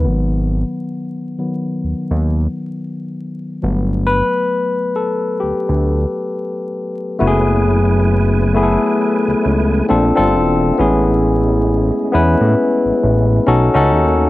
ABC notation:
X:1
M:4/4
L:1/16
Q:"Swing 16ths" 1/4=67
K:F#dor
V:1 name="Tine electric piano"
[D,F,B,]6 [D,F,B,]2 z8 | [F,A,B,]2 B4 A2 =G6 z2 | [A,B,EFG]4- [A,B,EFG] z [A,B,EGA]6 [^B,=D^EA] [B,DEA]3 | [B,CEG]4- [B,CEG] z [B,CEB]6 [CDFA] [CDFA]3 |]
V:2 name="Tonewheel organ"
z16 | z16 | [F,A,EBg]12 [A,^A,=D]4 | [G,C]12 [B,D]4 |]
V:3 name="Analog synth bass" clef=bass
G,,,3 z4 z D,, D,,2 z4 z | =G,,,3 z4 z =D,, D,,2 z4 z | F,,,6- F,,, z2 C,, C,,2 ^A,,, =G,,, E,,,2 | A,,,4- A,,, z E,, A,, z A,,, A,,,2 B,,, C,, D,,2 |]